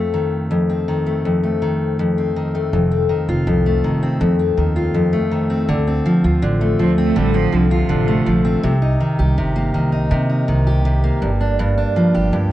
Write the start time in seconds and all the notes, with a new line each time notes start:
Already playing: F2 A3 C4
0.14 D#3
0.51 F2
0.70 C4
0.88 D#3
1.06 A3
1.25 F2
1.43 A3
1.62 D#3
1.99 F2
2.18 C4
2.36 D#3
2.55 A3
2.73 F1 F2
2.91 C4
3.09 D#3
3.29 F1 F4
3.47 C2 F2
3.66 A3
3.84 F1 D#3
4.03 C4
4.21 F2
4.39 C4
4.57 D#2 D#3
4.76 F4
4.94 F2
5.13 A3
5.31 D#3
5.50 C4
5.69 D2 D3
5.87 C4
6.06 F3
6.24 D2 F4
6.42 A1 D3
6.61 A3
6.79 D2 F3 C4
6.98 A3 C4
7.16 A1 D3 G3
7.34 F3 C4
7.52 C2 D3 F3
7.71 C3 F4
7.89 A1 D3
8.08 A3
8.26 A#1 F3
8.45 C4
8.63 C2 C3
8.82 D#4
9.00 D#3
9.19 C2 G4
9.38 G1 C3
9.56 A#3
9.74 C2 D#3
9.92 D#4
10.11 C3
10.29 D#4
10.48 C2 D#3
10.67 G4
10.85 C3
11.04 A#3
11.22 G1 G2
11.41 D4
11.59 G2
11.78 D4
11.96 F3
12.14 G1 G4
12.33 D2 G2